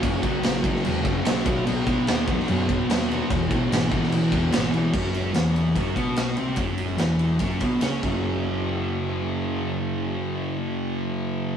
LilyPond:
<<
  \new Staff \with { instrumentName = "Distorted electric guitar" } { \clef bass \time 4/4 \key b \major \tempo 4 = 145 <fis, cis fis>8 <cis fis>4 <cis fis>8 <fis, cis fis>8 <cis fis>8 <fis, cis fis>8 <b, fis b>8 | <b, fis b>8 <fis b>4 <fis b>8 <b, fis b>8 <fis b>8 <b, fis b>8 <fis b>8 | <e, b, e>8 <b, e>4 <b, e>8 <e, b, e>8 <b, e>8 <e, b, e>8 <b, e>8 | <fis, fis>4 <e, e>4 <fis, fis>8 <b, b>4 <bis, bis>8 |
<fis, fis>4 <e, e>4 <fis, fis>8 <b, b>8 <cis cis'>8 <fis, cis fis>8~ | <fis, cis fis>1~ | <fis, cis fis>1 | }
  \new Staff \with { instrumentName = "Picked electric bass" } { \clef bass \time 4/4 \key b \major fis,,8 cis,8 ais,,4 e,,8 fis,,8 b,,8 b,,8 | b,,4 dis,4 fis,4 dis,4 | e,,8 b,,8 gis,,4 cis,8 e,,8 gis,,8 b,,8 | fis,,4 e,,4 fis,,8 b,,4 bis,,8 |
fis,,4 e,,4 fis,,8 b,,8 cis,8 fis,,8~ | fis,,1~ | fis,,1 | }
  \new DrumStaff \with { instrumentName = "Drums" } \drummode { \time 4/4 <cymc bd>8 <cymc bd>8 <cymc sn>8 <cymc bd>16 sn16 cymc8 <cymc bd>8 <cymc sn>16 sn16 <cymc bd>8 | cymc8 <cymc bd>8 <cymc sn>8 <cymc bd>16 sn16 cymc8 <cymc bd>8 <cymc sn>16 sn16 cymc8 | <cymc bd>8 <cymc bd>8 <cymc sn>8 <cymc bd>16 sn16 cymc8 <cymc bd>8 <cymc sn>8 cymc8 | <cymc bd>8 cymr8 <cymr sn>8 cymr8 <bd cymr>8 <bd cymr>8 <cymr sn>8 cymr8 |
<bd cymr>8 cymr8 <cymr sn>8 cymr8 <bd cymr>8 <bd cymr>8 <cymr sn>8 <cymc bd>8 | r4 r4 r4 r4 | r4 r4 r4 r4 | }
>>